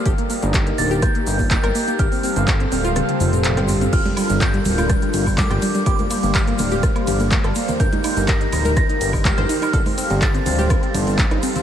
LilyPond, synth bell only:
\new Staff \with { instrumentName = "Synth bell" } { \time 4/4 \key ees \lydian \tempo 4 = 124 r4. a'''8 g'''4 g'''4 | f'''2. r4 | f'''4 g'''4 g'''4 d'''4 | d'''4 f'''2~ f'''8 r8 |
g'''4 bes'''4 bes'''4 f'''4 | f'''4 a'''2~ a'''8 r8 | }